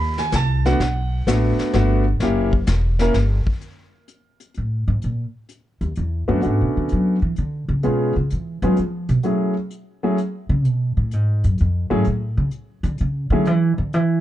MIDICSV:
0, 0, Header, 1, 5, 480
1, 0, Start_track
1, 0, Tempo, 468750
1, 819, Time_signature, 3, 2, 24, 8
1, 14546, End_track
2, 0, Start_track
2, 0, Title_t, "Grand piano"
2, 0, Program_c, 0, 0
2, 0, Note_on_c, 0, 83, 84
2, 184, Note_off_c, 0, 83, 0
2, 194, Note_on_c, 0, 80, 90
2, 338, Note_off_c, 0, 80, 0
2, 365, Note_on_c, 0, 81, 98
2, 672, Note_off_c, 0, 81, 0
2, 672, Note_on_c, 0, 59, 64
2, 673, Note_on_c, 0, 57, 62
2, 674, Note_on_c, 0, 78, 83
2, 679, Note_on_c, 0, 62, 66
2, 680, Note_on_c, 0, 66, 75
2, 806, Note_off_c, 0, 59, 0
2, 807, Note_off_c, 0, 57, 0
2, 809, Note_off_c, 0, 62, 0
2, 810, Note_off_c, 0, 66, 0
2, 1300, Note_on_c, 0, 57, 63
2, 1302, Note_on_c, 0, 59, 60
2, 1307, Note_on_c, 0, 62, 60
2, 1310, Note_on_c, 0, 66, 65
2, 1742, Note_off_c, 0, 78, 0
2, 1765, Note_off_c, 0, 57, 0
2, 1766, Note_off_c, 0, 59, 0
2, 1768, Note_off_c, 0, 62, 0
2, 1770, Note_off_c, 0, 66, 0
2, 1780, Note_on_c, 0, 57, 70
2, 1783, Note_on_c, 0, 59, 64
2, 1792, Note_on_c, 0, 62, 63
2, 1792, Note_on_c, 0, 66, 81
2, 2077, Note_off_c, 0, 57, 0
2, 2078, Note_off_c, 0, 59, 0
2, 2082, Note_off_c, 0, 66, 0
2, 2083, Note_off_c, 0, 62, 0
2, 2269, Note_on_c, 0, 58, 75
2, 2276, Note_on_c, 0, 61, 64
2, 2277, Note_on_c, 0, 64, 65
2, 2284, Note_on_c, 0, 67, 72
2, 2561, Note_off_c, 0, 58, 0
2, 2564, Note_off_c, 0, 61, 0
2, 2565, Note_off_c, 0, 64, 0
2, 2569, Note_off_c, 0, 67, 0
2, 3074, Note_on_c, 0, 58, 74
2, 3084, Note_on_c, 0, 61, 68
2, 3085, Note_on_c, 0, 64, 62
2, 3089, Note_on_c, 0, 70, 76
2, 3207, Note_off_c, 0, 58, 0
2, 3212, Note_off_c, 0, 61, 0
2, 3213, Note_off_c, 0, 64, 0
2, 3215, Note_off_c, 0, 70, 0
2, 6428, Note_on_c, 0, 57, 58
2, 6429, Note_on_c, 0, 59, 54
2, 6430, Note_on_c, 0, 61, 50
2, 6434, Note_on_c, 0, 66, 63
2, 6436, Note_on_c, 0, 62, 55
2, 6554, Note_off_c, 0, 57, 0
2, 6558, Note_off_c, 0, 59, 0
2, 6562, Note_off_c, 0, 61, 0
2, 6566, Note_off_c, 0, 62, 0
2, 6567, Note_off_c, 0, 66, 0
2, 6569, Note_on_c, 0, 57, 44
2, 6574, Note_on_c, 0, 59, 39
2, 6577, Note_on_c, 0, 61, 43
2, 6582, Note_on_c, 0, 62, 42
2, 6583, Note_on_c, 0, 66, 52
2, 7319, Note_off_c, 0, 57, 0
2, 7321, Note_off_c, 0, 59, 0
2, 7322, Note_off_c, 0, 61, 0
2, 7325, Note_off_c, 0, 62, 0
2, 7325, Note_off_c, 0, 66, 0
2, 8021, Note_on_c, 0, 56, 53
2, 8026, Note_on_c, 0, 59, 49
2, 8027, Note_on_c, 0, 61, 50
2, 8027, Note_on_c, 0, 65, 50
2, 8032, Note_on_c, 0, 68, 59
2, 8317, Note_off_c, 0, 56, 0
2, 8319, Note_off_c, 0, 59, 0
2, 8320, Note_off_c, 0, 61, 0
2, 8320, Note_off_c, 0, 65, 0
2, 8323, Note_off_c, 0, 68, 0
2, 8837, Note_on_c, 0, 56, 56
2, 8839, Note_on_c, 0, 59, 46
2, 8840, Note_on_c, 0, 61, 53
2, 8841, Note_on_c, 0, 65, 53
2, 8852, Note_on_c, 0, 68, 61
2, 8968, Note_off_c, 0, 56, 0
2, 8969, Note_off_c, 0, 59, 0
2, 8970, Note_off_c, 0, 61, 0
2, 8971, Note_off_c, 0, 65, 0
2, 8976, Note_off_c, 0, 68, 0
2, 9456, Note_on_c, 0, 54, 50
2, 9463, Note_on_c, 0, 57, 40
2, 9467, Note_on_c, 0, 61, 45
2, 9473, Note_on_c, 0, 64, 39
2, 9474, Note_on_c, 0, 68, 54
2, 9755, Note_off_c, 0, 54, 0
2, 9758, Note_off_c, 0, 57, 0
2, 9760, Note_off_c, 0, 61, 0
2, 9763, Note_off_c, 0, 64, 0
2, 9764, Note_off_c, 0, 68, 0
2, 10271, Note_on_c, 0, 54, 61
2, 10274, Note_on_c, 0, 57, 54
2, 10276, Note_on_c, 0, 61, 51
2, 10277, Note_on_c, 0, 64, 53
2, 10280, Note_on_c, 0, 68, 65
2, 10406, Note_off_c, 0, 54, 0
2, 10407, Note_off_c, 0, 57, 0
2, 10408, Note_off_c, 0, 61, 0
2, 10409, Note_off_c, 0, 64, 0
2, 10410, Note_off_c, 0, 68, 0
2, 12187, Note_on_c, 0, 61, 63
2, 12188, Note_on_c, 0, 54, 69
2, 12188, Note_on_c, 0, 57, 60
2, 12194, Note_on_c, 0, 64, 65
2, 12197, Note_on_c, 0, 68, 74
2, 12323, Note_off_c, 0, 54, 0
2, 12323, Note_off_c, 0, 61, 0
2, 12324, Note_off_c, 0, 57, 0
2, 12326, Note_off_c, 0, 64, 0
2, 12328, Note_off_c, 0, 68, 0
2, 13637, Note_on_c, 0, 54, 61
2, 13639, Note_on_c, 0, 57, 53
2, 13642, Note_on_c, 0, 61, 60
2, 13642, Note_on_c, 0, 64, 58
2, 13647, Note_on_c, 0, 68, 66
2, 13768, Note_off_c, 0, 54, 0
2, 13769, Note_off_c, 0, 57, 0
2, 13771, Note_off_c, 0, 61, 0
2, 13771, Note_off_c, 0, 64, 0
2, 13773, Note_off_c, 0, 68, 0
2, 14546, End_track
3, 0, Start_track
3, 0, Title_t, "Upright bass"
3, 0, Program_c, 1, 32
3, 0, Note_on_c, 1, 39, 94
3, 318, Note_off_c, 1, 39, 0
3, 333, Note_on_c, 1, 36, 91
3, 802, Note_off_c, 1, 36, 0
3, 817, Note_on_c, 1, 35, 75
3, 1284, Note_off_c, 1, 35, 0
3, 1297, Note_on_c, 1, 33, 83
3, 1605, Note_off_c, 1, 33, 0
3, 1779, Note_on_c, 1, 31, 95
3, 2245, Note_off_c, 1, 31, 0
3, 2254, Note_on_c, 1, 30, 80
3, 2722, Note_off_c, 1, 30, 0
3, 2741, Note_on_c, 1, 28, 91
3, 3206, Note_off_c, 1, 28, 0
3, 3218, Note_on_c, 1, 31, 90
3, 3525, Note_off_c, 1, 31, 0
3, 4685, Note_on_c, 1, 45, 77
3, 4987, Note_off_c, 1, 45, 0
3, 4994, Note_on_c, 1, 44, 92
3, 5138, Note_off_c, 1, 44, 0
3, 5161, Note_on_c, 1, 46, 79
3, 5352, Note_off_c, 1, 46, 0
3, 5948, Note_on_c, 1, 39, 79
3, 6095, Note_off_c, 1, 39, 0
3, 6117, Note_on_c, 1, 40, 80
3, 6429, Note_off_c, 1, 40, 0
3, 6435, Note_on_c, 1, 42, 84
3, 6578, Note_off_c, 1, 42, 0
3, 6605, Note_on_c, 1, 44, 72
3, 6748, Note_off_c, 1, 44, 0
3, 6772, Note_on_c, 1, 47, 66
3, 6912, Note_off_c, 1, 47, 0
3, 6932, Note_on_c, 1, 50, 72
3, 7072, Note_off_c, 1, 50, 0
3, 7089, Note_on_c, 1, 54, 89
3, 7388, Note_off_c, 1, 54, 0
3, 7394, Note_on_c, 1, 52, 82
3, 7538, Note_off_c, 1, 52, 0
3, 7560, Note_on_c, 1, 50, 85
3, 7863, Note_off_c, 1, 50, 0
3, 7869, Note_on_c, 1, 49, 91
3, 8015, Note_off_c, 1, 49, 0
3, 8047, Note_on_c, 1, 47, 69
3, 8350, Note_off_c, 1, 47, 0
3, 8356, Note_on_c, 1, 49, 72
3, 8499, Note_off_c, 1, 49, 0
3, 8520, Note_on_c, 1, 52, 78
3, 8823, Note_off_c, 1, 52, 0
3, 8829, Note_on_c, 1, 54, 104
3, 8975, Note_off_c, 1, 54, 0
3, 8999, Note_on_c, 1, 53, 78
3, 9301, Note_off_c, 1, 53, 0
3, 9307, Note_on_c, 1, 47, 97
3, 9398, Note_off_c, 1, 47, 0
3, 10745, Note_on_c, 1, 49, 92
3, 10911, Note_off_c, 1, 49, 0
3, 10911, Note_on_c, 1, 47, 72
3, 11225, Note_off_c, 1, 47, 0
3, 11233, Note_on_c, 1, 45, 83
3, 11400, Note_off_c, 1, 45, 0
3, 11400, Note_on_c, 1, 44, 69
3, 11709, Note_off_c, 1, 44, 0
3, 11716, Note_on_c, 1, 42, 83
3, 11858, Note_off_c, 1, 42, 0
3, 11885, Note_on_c, 1, 41, 85
3, 12187, Note_off_c, 1, 41, 0
3, 12193, Note_on_c, 1, 44, 85
3, 12337, Note_off_c, 1, 44, 0
3, 12357, Note_on_c, 1, 45, 74
3, 12665, Note_off_c, 1, 45, 0
3, 12671, Note_on_c, 1, 49, 97
3, 12760, Note_off_c, 1, 49, 0
3, 13141, Note_on_c, 1, 50, 100
3, 13290, Note_off_c, 1, 50, 0
3, 13317, Note_on_c, 1, 49, 88
3, 13614, Note_off_c, 1, 49, 0
3, 13621, Note_on_c, 1, 50, 96
3, 13793, Note_off_c, 1, 50, 0
3, 13793, Note_on_c, 1, 52, 82
3, 14104, Note_off_c, 1, 52, 0
3, 14110, Note_on_c, 1, 50, 89
3, 14274, Note_off_c, 1, 50, 0
3, 14274, Note_on_c, 1, 52, 100
3, 14546, Note_off_c, 1, 52, 0
3, 14546, End_track
4, 0, Start_track
4, 0, Title_t, "Muted upright bass strokes"
4, 1623, Note_on_c, 9, 29, 40
4, 1725, Note_off_c, 9, 29, 0
4, 3547, Note_on_c, 9, 29, 38
4, 3650, Note_off_c, 9, 29, 0
4, 14546, End_track
5, 0, Start_track
5, 0, Title_t, "Drums"
5, 183, Note_on_c, 9, 38, 42
5, 285, Note_off_c, 9, 38, 0
5, 327, Note_on_c, 9, 44, 52
5, 331, Note_on_c, 9, 38, 59
5, 336, Note_on_c, 9, 36, 20
5, 429, Note_off_c, 9, 44, 0
5, 433, Note_off_c, 9, 38, 0
5, 438, Note_off_c, 9, 36, 0
5, 669, Note_on_c, 9, 38, 37
5, 772, Note_off_c, 9, 38, 0
5, 821, Note_on_c, 9, 36, 25
5, 822, Note_on_c, 9, 25, 53
5, 822, Note_on_c, 9, 38, 48
5, 923, Note_off_c, 9, 36, 0
5, 924, Note_off_c, 9, 38, 0
5, 1302, Note_on_c, 9, 36, 18
5, 1304, Note_on_c, 9, 44, 60
5, 1308, Note_on_c, 9, 38, 62
5, 1405, Note_off_c, 9, 36, 0
5, 1406, Note_off_c, 9, 44, 0
5, 1411, Note_off_c, 9, 38, 0
5, 1629, Note_on_c, 9, 38, 38
5, 1731, Note_off_c, 9, 38, 0
5, 1775, Note_on_c, 9, 38, 41
5, 1780, Note_on_c, 9, 36, 20
5, 1878, Note_off_c, 9, 38, 0
5, 1883, Note_off_c, 9, 36, 0
5, 2254, Note_off_c, 9, 25, 0
5, 2254, Note_on_c, 9, 25, 43
5, 2254, Note_on_c, 9, 38, 44
5, 2260, Note_on_c, 9, 36, 21
5, 2356, Note_off_c, 9, 38, 0
5, 2362, Note_off_c, 9, 36, 0
5, 2590, Note_on_c, 9, 36, 51
5, 2692, Note_off_c, 9, 36, 0
5, 2732, Note_on_c, 9, 44, 53
5, 2736, Note_on_c, 9, 38, 62
5, 2741, Note_on_c, 9, 36, 19
5, 2835, Note_off_c, 9, 44, 0
5, 2839, Note_off_c, 9, 38, 0
5, 2843, Note_off_c, 9, 36, 0
5, 3064, Note_on_c, 9, 38, 43
5, 3166, Note_off_c, 9, 38, 0
5, 3218, Note_on_c, 9, 38, 44
5, 3221, Note_on_c, 9, 36, 23
5, 3320, Note_off_c, 9, 38, 0
5, 3323, Note_off_c, 9, 36, 0
5, 3550, Note_on_c, 9, 36, 47
5, 3653, Note_off_c, 9, 36, 0
5, 3698, Note_on_c, 9, 42, 39
5, 3801, Note_off_c, 9, 42, 0
5, 4177, Note_on_c, 9, 42, 38
5, 4210, Note_off_c, 9, 25, 0
5, 4279, Note_off_c, 9, 42, 0
5, 4506, Note_on_c, 9, 42, 43
5, 4608, Note_off_c, 9, 42, 0
5, 4653, Note_on_c, 9, 42, 36
5, 4755, Note_off_c, 9, 42, 0
5, 5139, Note_on_c, 9, 42, 38
5, 5241, Note_off_c, 9, 42, 0
5, 5619, Note_on_c, 9, 42, 40
5, 5721, Note_off_c, 9, 42, 0
5, 5948, Note_on_c, 9, 42, 39
5, 6051, Note_off_c, 9, 42, 0
5, 6096, Note_on_c, 9, 42, 39
5, 6199, Note_off_c, 9, 42, 0
5, 6577, Note_on_c, 9, 42, 38
5, 6679, Note_off_c, 9, 42, 0
5, 7052, Note_on_c, 9, 42, 41
5, 7154, Note_off_c, 9, 42, 0
5, 7537, Note_on_c, 9, 42, 33
5, 7639, Note_off_c, 9, 42, 0
5, 8018, Note_on_c, 9, 42, 39
5, 8121, Note_off_c, 9, 42, 0
5, 8501, Note_on_c, 9, 42, 45
5, 8604, Note_off_c, 9, 42, 0
5, 8831, Note_on_c, 9, 42, 42
5, 8933, Note_off_c, 9, 42, 0
5, 8975, Note_on_c, 9, 42, 38
5, 9078, Note_off_c, 9, 42, 0
5, 9304, Note_on_c, 9, 42, 40
5, 9407, Note_off_c, 9, 42, 0
5, 9452, Note_on_c, 9, 42, 36
5, 9555, Note_off_c, 9, 42, 0
5, 9937, Note_on_c, 9, 42, 40
5, 10039, Note_off_c, 9, 42, 0
5, 10424, Note_on_c, 9, 42, 39
5, 10526, Note_off_c, 9, 42, 0
5, 10902, Note_on_c, 9, 42, 43
5, 11005, Note_off_c, 9, 42, 0
5, 11378, Note_on_c, 9, 42, 44
5, 11481, Note_off_c, 9, 42, 0
5, 11711, Note_on_c, 9, 42, 41
5, 11813, Note_off_c, 9, 42, 0
5, 11855, Note_on_c, 9, 42, 35
5, 11958, Note_off_c, 9, 42, 0
5, 12334, Note_on_c, 9, 42, 37
5, 12437, Note_off_c, 9, 42, 0
5, 12811, Note_on_c, 9, 42, 44
5, 12913, Note_off_c, 9, 42, 0
5, 13143, Note_on_c, 9, 42, 46
5, 13246, Note_off_c, 9, 42, 0
5, 13289, Note_on_c, 9, 42, 37
5, 13391, Note_off_c, 9, 42, 0
5, 13776, Note_on_c, 9, 42, 38
5, 13878, Note_off_c, 9, 42, 0
5, 14261, Note_on_c, 9, 42, 42
5, 14364, Note_off_c, 9, 42, 0
5, 14546, End_track
0, 0, End_of_file